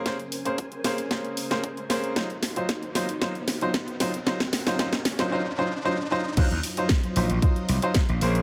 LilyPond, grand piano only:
\new Staff \with { instrumentName = "Grand piano" } { \time 4/4 \key ees \dorian \tempo 4 = 114 <bes des' aes' c''>16 r8 <bes des' aes' c''>16 r8 <bes des' aes' c''>16 r16 <bes des' aes' c''>8. <bes des' aes' c''>16 r8 <bes des' aes' c''>8 | <ges ees' f' c''>16 r8 <ges ees' f' c''>16 r8 <ges ees' f' c''>16 r16 <ges ees' f' c''>16 r8 <ges ees' f' c''>16 r8 <ges ees' f' c''>16 r16 | <ges ees' f' c''>16 r8 <ges ees' f' c''>16 <ges ees' f' c''>16 r8 <ges ees' f' c''>16 <ges ees' f' c''>16 r16 <ges ees' f' c''>16 r16 <ges ees' f' c''>16 r16 <ges ees' f' c''>16 r16 | <ges ees' f' c''>16 r8 <ges ees' f' c''>16 r8 <ges ees' f' c''>16 r16 <ges ees' f' c''>8. <ges ees' f' c''>16 r8 <bes des' aes' c''>8 | }